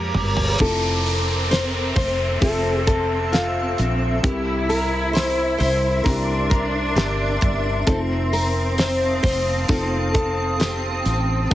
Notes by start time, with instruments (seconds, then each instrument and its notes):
Already playing: fretless electric bass F2, felt piano G#3 A#3 D4, nylon-string guitar G4 A#4, ambient pad A#4 A#5 D6, reverse cymbal
0.14 fretless electric bass G1, mid tom
0.37 floor tom
0.60 fretless electric bass F1, felt piano C4 E4 F4 A4, cello section C4, nylon-string guitar A4, ambient pad A4 E5 E6, kick, crash, downlifter
1.06 hi-hat pedal, open hi-hat
1.51 nylon-string guitar C5, snare, hi-hat pedal, open hi-hat
1.96 fretless electric bass F1, nylon-string guitar C5, kick, hi-hat pedal, open hi-hat
2.41 fretless electric bass F1, felt piano C4 F4 A4 E5, nylon-string guitar A4, kick, hi-hat pedal, open hi-hat
2.87 nylon-string guitar A4, kick, hi-hat pedal, open hi-hat
3.32 nylon-string guitar F4, snare, hi-hat pedal, open hi-hat
3.78 fretless electric bass A#1, hi-hat pedal, open hi-hat
4.23 fretless electric bass C2, felt piano C3 C4 E4 G4 A#4, cello section E4, nylon-string guitar G4, ambient pad A#4 E5 C6, kick, hi-hat pedal, open hi-hat
4.69 nylon-string guitar A#4, hi-hat pedal, open hi-hat
5.13 nylon-string guitar C5, snare, hi-hat pedal, open hi-hat
5.58 fretless electric bass C2, nylon-string guitar C5, hi-hat pedal, open hi-hat
6.04 fretless electric bass C2, felt piano C4 E4 G4 A#4, cello section D4, nylon-string guitar A#4, kick, hi-hat pedal, open hi-hat
6.50 nylon-string guitar A#4, kick, hi-hat pedal, open hi-hat
6.95 fretless electric bass G1, nylon-string guitar G4, snare, hi-hat pedal, open hi-hat
7.41 fretless electric bass G1, kick, hi-hat pedal, open hi-hat
7.87 fretless electric bass F1, felt piano C4 D#4 F4 C5, cello section C4, nylon-string guitar A4, ambient pad F5 A5 D#6, kick, hi-hat pedal, open hi-hat, tambourine
8.33 nylon-string guitar A#4, hi-hat pedal, open hi-hat, tambourine
8.78 nylon-string guitar C5, snare, hi-hat pedal, open hi-hat, tambourine
9.23 fretless electric bass F1, nylon-string guitar C5, kick, hi-hat pedal, open hi-hat, tambourine
9.68 fretless electric bass F1, felt piano C4 D#4 F4 C5, nylon-string guitar A4, ambient pad G5, kick, hi-hat pedal, open hi-hat, tambourine
10.14 nylon-string guitar A4, kick, hi-hat pedal, open hi-hat
10.60 nylon-string guitar G4, snare, hi-hat pedal, open hi-hat, tambourine
11.05 fretless electric bass A1, hi-hat pedal, open hi-hat, tambourine
11.50 felt piano A#3 D4, tambourine